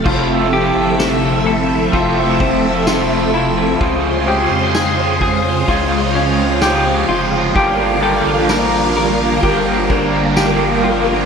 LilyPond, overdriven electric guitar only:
\new Staff \with { instrumentName = "Overdriven electric guitar" } { \time 4/4 \key f \major \tempo 4 = 64 <f c' e' a'>8 <c' e' a'>4. <f c' e' a'>4 <f c' e' a'>4 | <des f c' f' aes'>8 <c' f' aes'>4. <f c' f' aes'>4 <f c' f' aes'>4 | <g, d f bes d' g'>8 <f bes d' g'>4. <f bes d' g'>4 <f bes d' g'>4 | }